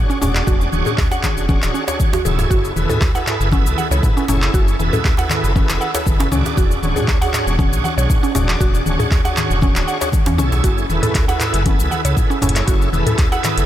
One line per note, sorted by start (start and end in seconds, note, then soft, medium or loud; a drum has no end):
0.00 0.19 D4 medium
0.00 0.19 F#4 medium
0.00 0.19 G#4 medium
0.00 0.19 C#5 medium
0.10 0.20 C#4 loud
0.10 cabasa soft
0.21 0.43 E1 medium
0.21 0.34 C#4 loud
0.21 0.70 D4 medium
0.21 0.70 F#4 medium
0.21 0.70 G#4 medium
0.21 0.70 D5 medium
0.21 djembe slap medium
0.21 djembe tone medium
0.21 low conga medium
0.21 cabasa medium
0.35 clap medium
0.35 cabasa soft
0.47 0.68 E1 loud
0.47 0.59 F#4 loud
0.47 kick loud
0.47 cabasa medium
0.61 cabasa soft
0.72 0.83 D1 medium
0.72 1.08 D4 medium
0.72 1.08 F#4 medium
0.72 1.08 G#4 medium
0.72 1.08 C#5 medium
0.72 high conga medium
0.72 cabasa soft
0.85 0.97 G#4 medium
0.85 djembe tone medium
0.85 low conga medium
0.85 cabasa medium
0.98 kick loud
0.98 clap medium
0.98 djembe bass medium
0.98 cabasa soft
1.11 1.46 D4 medium
1.11 1.46 F#4 medium
1.11 1.46 G#4 medium
1.11 1.46 C#5 loud
1.11 1.23 F#5 loud
1.11 djembe slap medium
1.11 djembe tone medium
1.11 cabasa medium
1.23 kick medium
1.23 clap medium
1.23 high conga medium
1.23 cabasa medium
1.37 1.57 E1 medium
1.37 cabasa soft
1.49 1.61 C#4 loud
1.49 1.85 D4 medium
1.49 1.85 F#4 medium
1.49 1.85 G#4 medium
1.49 1.85 C#5 loud
1.49 kick loud
1.49 high conga medium
1.49 cabasa soft
1.62 1.72 D1 loud
1.62 clap medium
1.62 cabasa medium
1.74 1.87 C#4 medium
1.74 cabasa medium
1.88 2.22 D4 medium
1.88 2.22 F#4 medium
1.88 2.22 G#4 medium
1.88 1.98 C#5 medium
1.88 2.22 C#5 medium
1.88 djembe slap loud
1.88 cabasa medium
2.00 kick loud
2.00 high conga medium
2.00 cabasa medium
2.13 2.24 F#4 loud
2.13 high tom soft
2.13 djembe slap loud
2.13 djembe tone medium
2.13 cabasa soft
2.25 2.46 D1 medium
2.25 2.73 E4 medium
2.25 2.38 G#4 medium
2.25 2.73 G#4 medium
2.25 2.73 A4 medium
2.25 2.73 C#5 medium
2.25 mid tom medium
2.25 high conga medium
2.25 low conga medium
2.25 cabasa medium
2.39 mid tom medium
2.39 djembe slap medium
2.39 djembe tone medium
2.39 cabasa soft
2.50 2.71 F#1 loud
2.50 2.63 F#4 loud
2.50 kick loud
2.50 cabasa medium
2.65 cabasa medium
2.76 2.87 E1 medium
2.76 3.12 E4 medium
2.76 3.12 G#4 medium
2.76 3.12 A4 medium
2.76 3.12 B4 medium
2.76 high conga medium
2.76 cabasa medium
2.89 3.00 A4 medium
2.89 mid tom medium
2.89 djembe tone medium
2.89 low conga loud
2.89 cabasa medium
3.01 kick loud
3.01 clap medium
3.01 djembe bass medium
3.01 cabasa soft
3.15 3.49 E4 medium
3.15 3.49 G#4 medium
3.15 3.49 A4 medium
3.15 3.49 B4 loud
3.15 3.26 F#5 loud
3.15 djembe slap medium
3.15 djembe tone medium
3.15 cabasa medium
3.27 clap medium
3.27 mid tom medium
3.27 cabasa medium
3.40 3.67 F#1 medium
3.40 cabasa medium
3.52 3.65 C#4 loud
3.52 3.88 E4 medium
3.52 3.88 G#4 medium
3.52 3.88 A4 medium
3.52 3.88 B4 loud
3.52 kick loud
3.52 high conga medium
3.52 cabasa medium
3.66 3.75 C#2 medium
3.66 cabasa medium
3.78 3.90 F#5 medium
3.78 high conga medium
3.78 djembe tone medium
3.78 cabasa medium
3.91 4.01 C#2 loud
3.91 4.26 E4 medium
3.91 4.26 G#4 medium
3.91 4.26 A4 medium
3.91 4.26 B4 medium
3.91 4.03 C#5 medium
3.91 cabasa medium
4.03 kick loud
4.03 low conga loud
4.03 cabasa medium
4.17 4.28 C#4 loud
4.17 cabasa soft
4.28 4.49 F#1 medium
4.28 4.41 C#4 loud
4.28 4.76 E4 medium
4.28 4.76 G#4 medium
4.28 4.76 A4 medium
4.28 4.76 C#5 medium
4.28 djembe slap medium
4.28 djembe tone medium
4.28 low conga medium
4.28 cabasa medium
4.42 clap medium
4.42 cabasa medium
4.54 4.75 F#1 loud
4.54 4.66 F#4 loud
4.54 kick loud
4.54 cabasa medium
4.68 cabasa medium
4.79 4.90 E1 medium
4.79 5.15 E4 medium
4.79 5.15 G#4 medium
4.79 5.15 A4 medium
4.79 5.15 B4 loud
4.79 high conga medium
4.79 cabasa medium
4.93 5.04 A4 medium
4.93 mid tom medium
4.93 djembe tone medium
4.93 low conga medium
4.93 cabasa medium
5.05 kick loud
5.05 clap medium
5.05 djembe bass medium
5.05 cabasa medium
5.17 5.53 E4 medium
5.17 5.53 G#4 medium
5.17 5.53 A4 medium
5.17 5.53 B4 loud
5.17 5.30 F#5 loud
5.17 djembe slap medium
5.17 djembe tone loud
5.17 cabasa medium
5.30 clap medium
5.30 mid tom medium
5.30 high conga medium
5.30 cabasa medium
5.44 5.64 F#1 medium
5.44 cabasa medium
5.56 5.68 C#4 loud
5.56 5.91 E4 loud
5.56 5.91 G#4 medium
5.56 5.91 A4 medium
5.56 5.91 B4 loud
5.56 kick loud
5.56 high conga loud
5.56 cabasa medium
5.69 5.79 E1 loud
5.69 clap medium
5.69 cabasa medium
5.81 5.93 F#5 medium
5.81 cabasa medium
5.94 6.29 E4 medium
5.94 6.29 G#4 medium
5.94 6.29 A4 medium
5.94 6.29 B4 medium
5.94 6.06 C#5 medium
5.94 djembe slap loud
5.94 cabasa medium
6.07 6.27 F#1 medium
6.07 kick loud
6.07 high conga medium
6.07 cabasa loud
6.20 6.31 C#4 loud
6.20 djembe slap loud
6.20 djembe tone medium
6.20 cabasa medium
6.32 6.43 C#2 medium
6.32 6.44 C#4 loud
6.32 6.80 D4 medium
6.32 6.80 F#4 medium
6.32 6.80 G#4 medium
6.32 6.80 D5 medium
6.32 high conga loud
6.32 low conga medium
6.32 cabasa medium
6.46 djembe slap medium
6.46 djembe tone medium
6.46 cabasa medium
6.57 6.78 E1 loud
6.57 6.69 F#4 loud
6.57 kick loud
6.57 cabasa loud
6.71 cabasa medium
6.83 6.94 D1 medium
6.83 7.18 D4 medium
6.83 7.18 F#4 medium
6.83 7.18 G#4 medium
6.83 7.18 C#5 loud
6.83 high conga medium
6.83 cabasa medium
6.96 7.07 G#4 medium
6.96 mid tom medium
6.96 djembe tone medium
6.96 low conga medium
6.96 cabasa medium
7.08 kick loud
7.08 clap medium
7.08 djembe bass medium
7.08 cabasa medium
7.21 7.56 D4 medium
7.21 7.56 F#4 medium
7.21 7.56 G#4 medium
7.21 7.56 C#5 loud
7.21 7.33 F#5 loud
7.21 djembe slap medium
7.21 djembe tone loud
7.21 cabasa medium
7.33 clap medium
7.33 mid tom medium
7.33 cabasa medium
7.47 7.74 E1 medium
7.47 cabasa medium
7.59 7.71 C#4 loud
7.59 7.95 D4 medium
7.59 7.95 F#4 medium
7.59 7.95 G#4 medium
7.59 7.95 C#5 loud
7.59 kick loud
7.59 high conga loud
7.59 cabasa medium
7.72 7.82 B1 medium
7.72 cabasa medium
7.84 7.97 F#5 medium
7.84 high conga medium
7.84 djembe tone medium
7.84 cabasa medium
7.98 8.07 B1 loud
7.98 8.32 D4 medium
7.98 8.32 F#4 medium
7.98 8.32 G#4 medium
7.98 8.09 C#5 medium
7.98 8.32 C#5 medium
7.98 cabasa medium
8.10 kick loud
8.10 low conga medium
8.10 cabasa medium
8.23 8.34 C#4 loud
8.23 cabasa medium
8.35 8.56 E1 medium
8.35 8.47 C#4 loud
8.35 8.83 D4 medium
8.35 8.83 F#4 medium
8.35 8.83 G#4 medium
8.35 8.83 D5 medium
8.35 djembe slap medium
8.35 djembe tone medium
8.35 low conga medium
8.35 cabasa loud
8.49 clap medium
8.49 cabasa medium
8.60 8.82 E1 loud
8.60 8.73 F#4 loud
8.60 kick loud
8.60 cabasa medium
8.75 cabasa medium
8.86 8.97 D1 medium
8.86 9.22 D4 medium
8.86 9.22 F#4 medium
8.86 9.22 G#4 medium
8.86 9.22 C#5 medium
8.86 high conga medium
8.86 cabasa medium
8.99 9.10 G#4 medium
8.99 mid tom loud
8.99 djembe tone medium
8.99 low conga medium
8.99 cabasa medium
9.11 kick loud
9.11 clap medium
9.11 djembe bass medium
9.11 cabasa medium
9.25 9.59 D4 medium
9.25 9.59 F#4 medium
9.25 9.59 G#4 medium
9.25 9.59 C#5 loud
9.25 9.36 F#5 loud
9.25 djembe slap medium
9.25 djembe tone medium
9.25 cabasa medium
9.37 clap medium
9.37 mid tom loud
9.37 high conga medium
9.37 cabasa medium
9.50 9.71 E1 medium
9.50 cabasa medium
9.62 9.74 C#4 loud
9.62 9.98 D4 medium
9.62 9.98 F#4 medium
9.62 9.98 G#4 medium
9.62 9.98 C#5 loud
9.62 kick loud
9.62 high conga loud
9.62 cabasa medium
9.76 9.86 D1 loud
9.76 clap medium
9.76 cabasa medium
9.88 10.00 F#5 medium
9.88 cabasa medium
10.01 10.09 D4 medium
10.01 10.09 F#4 medium
10.01 10.09 G#4 medium
10.01 10.13 C#5 medium
10.01 10.09 C#5 loud
10.01 djembe slap loud
10.01 cabasa medium
10.12 kick loud
10.12 high conga medium
10.12 cabasa medium
10.26 10.40 E2 medium
10.26 10.37 C#4 loud
10.26 djembe slap loud
10.26 djembe tone medium
10.26 cabasa medium
10.38 10.50 B1 loud
10.38 10.51 C#4 loud
10.38 10.87 E4 medium
10.38 10.87 G#4 medium
10.38 10.87 A4 medium
10.38 10.87 C#5 loud
10.38 high conga loud
10.38 low conga medium
10.38 cabasa loud
10.52 10.62 B1 loud
10.52 djembe slap medium
10.52 djembe tone medium
10.52 cabasa medium
10.64 10.85 F#1 loud
10.64 10.76 F#4 loud
10.64 kick loud
10.64 closed hi-hat medium
10.64 cabasa medium
10.78 cabasa medium
10.90 11.01 E1 medium
10.90 11.25 E4 medium
10.90 11.25 G#4 medium
10.90 11.25 A4 medium
10.90 11.25 B4 loud
10.90 high conga medium
10.90 cabasa medium
11.03 11.14 A4 medium
11.03 closed hi-hat soft
11.03 mid tom loud
11.03 djembe tone medium
11.03 low conga medium
11.03 cabasa medium
11.15 kick loud
11.15 clap medium
11.15 closed hi-hat medium
11.15 djembe bass medium
11.15 cabasa medium
11.28 11.63 E4 medium
11.28 11.63 G#4 medium
11.28 11.63 A4 medium
11.28 11.63 B4 loud
11.28 11.40 F#5 loud
11.28 djembe slap medium
11.28 djembe tone loud
11.28 cabasa medium
11.40 clap medium
11.40 closed hi-hat soft
11.40 mid tom medium
11.40 cabasa medium
11.54 11.81 F#1 medium
11.54 closed hi-hat soft
11.54 cabasa medium
11.66 11.78 C#4 loud
11.66 12.02 E4 medium
11.66 12.02 G#4 medium
11.66 12.02 A4 medium
11.66 12.02 B4 loud
11.66 kick loud
11.66 closed hi-hat medium
11.66 high conga loud
11.66 cabasa medium
11.79 11.89 C#2 medium
11.79 cabasa medium
11.91 12.03 F#5 medium
11.91 djembe tone medium
11.91 high conga medium
11.91 cabasa medium
12.05 12.14 C#2 loud
12.05 12.39 E4 medium
12.05 12.39 G#4 medium
12.05 12.39 A4 medium
12.05 12.39 B4 medium
12.05 12.16 C#5 medium
12.05 closed hi-hat soft
12.05 cabasa medium
12.17 kick loud
12.17 low conga medium
12.17 cabasa medium
12.30 12.41 C#4 loud
12.30 cabasa medium
12.42 12.63 F#1 medium
12.42 12.54 C#4 loud
12.42 12.90 E4 medium
12.42 12.90 G#4 medium
12.42 12.90 A4 medium
12.42 12.90 C#5 medium
12.42 closed hi-hat soft
12.42 djembe slap medium
12.42 djembe tone medium
12.42 low conga medium
12.42 cabasa medium
12.49 closed hi-hat medium
12.56 clap medium
12.56 closed hi-hat soft
12.56 cabasa medium
12.67 12.89 F#1 loud
12.67 12.80 F#4 loud
12.67 kick loud
12.67 closed hi-hat medium
12.67 cabasa medium
12.82 cabasa medium
12.92 13.04 E1 medium
12.92 13.29 E4 medium
12.92 13.29 G#4 medium
12.92 13.29 A4 medium
12.92 13.29 B4 loud
12.92 high conga medium
12.92 cabasa medium
13.06 13.17 A4 medium
13.06 closed hi-hat soft
13.06 mid tom loud
13.06 djembe tone medium
13.06 low conga medium
13.06 cabasa medium
13.18 kick loud
13.18 clap medium
13.18 closed hi-hat medium
13.18 djembe bass medium
13.18 cabasa soft
13.32 13.66 E4 medium
13.32 13.66 G#4 medium
13.32 13.66 A4 medium
13.32 13.66 B4 loud
13.32 13.43 F#5 loud
13.32 djembe slap medium
13.32 djembe tone medium
13.32 cabasa soft
13.44 clap medium
13.44 closed hi-hat soft
13.44 mid tom loud
13.44 high conga medium
13.44 cabasa medium
13.57 13.66 F#1 medium
13.57 closed hi-hat soft
13.57 cabasa soft